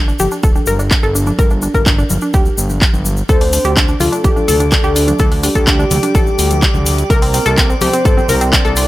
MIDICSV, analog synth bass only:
0, 0, Header, 1, 2, 480
1, 0, Start_track
1, 0, Key_signature, -2, "minor"
1, 0, Tempo, 476190
1, 1398, Time_signature, 4, 2, 24, 8
1, 8948, End_track
2, 0, Start_track
2, 0, Title_t, "Analog synth bass"
2, 0, Program_c, 0, 38
2, 0, Note_on_c, 0, 31, 88
2, 134, Note_off_c, 0, 31, 0
2, 197, Note_on_c, 0, 31, 79
2, 277, Note_off_c, 0, 31, 0
2, 437, Note_on_c, 0, 26, 96
2, 598, Note_off_c, 0, 26, 0
2, 677, Note_on_c, 0, 31, 78
2, 974, Note_off_c, 0, 31, 0
2, 1038, Note_on_c, 0, 31, 104
2, 1334, Note_off_c, 0, 31, 0
2, 1397, Note_on_c, 0, 31, 94
2, 1694, Note_off_c, 0, 31, 0
2, 1759, Note_on_c, 0, 31, 92
2, 2055, Note_off_c, 0, 31, 0
2, 2118, Note_on_c, 0, 31, 78
2, 2198, Note_off_c, 0, 31, 0
2, 2358, Note_on_c, 0, 26, 99
2, 2519, Note_off_c, 0, 26, 0
2, 2598, Note_on_c, 0, 31, 80
2, 2894, Note_off_c, 0, 31, 0
2, 2959, Note_on_c, 0, 31, 101
2, 3254, Note_off_c, 0, 31, 0
2, 3318, Note_on_c, 0, 38, 94
2, 3614, Note_off_c, 0, 38, 0
2, 3677, Note_on_c, 0, 38, 89
2, 3974, Note_off_c, 0, 38, 0
2, 4038, Note_on_c, 0, 38, 78
2, 4118, Note_off_c, 0, 38, 0
2, 4277, Note_on_c, 0, 33, 96
2, 4438, Note_off_c, 0, 33, 0
2, 4517, Note_on_c, 0, 38, 76
2, 4814, Note_off_c, 0, 38, 0
2, 4879, Note_on_c, 0, 38, 101
2, 5174, Note_off_c, 0, 38, 0
2, 5237, Note_on_c, 0, 38, 99
2, 5534, Note_off_c, 0, 38, 0
2, 5598, Note_on_c, 0, 38, 93
2, 5894, Note_off_c, 0, 38, 0
2, 5958, Note_on_c, 0, 38, 82
2, 6038, Note_off_c, 0, 38, 0
2, 6197, Note_on_c, 0, 33, 97
2, 6358, Note_off_c, 0, 33, 0
2, 6437, Note_on_c, 0, 38, 81
2, 6734, Note_off_c, 0, 38, 0
2, 6798, Note_on_c, 0, 38, 104
2, 7094, Note_off_c, 0, 38, 0
2, 7157, Note_on_c, 0, 36, 99
2, 7454, Note_off_c, 0, 36, 0
2, 7519, Note_on_c, 0, 36, 93
2, 7815, Note_off_c, 0, 36, 0
2, 7878, Note_on_c, 0, 36, 81
2, 7958, Note_off_c, 0, 36, 0
2, 8117, Note_on_c, 0, 31, 95
2, 8278, Note_off_c, 0, 31, 0
2, 8357, Note_on_c, 0, 36, 80
2, 8654, Note_off_c, 0, 36, 0
2, 8718, Note_on_c, 0, 36, 100
2, 8948, Note_off_c, 0, 36, 0
2, 8948, End_track
0, 0, End_of_file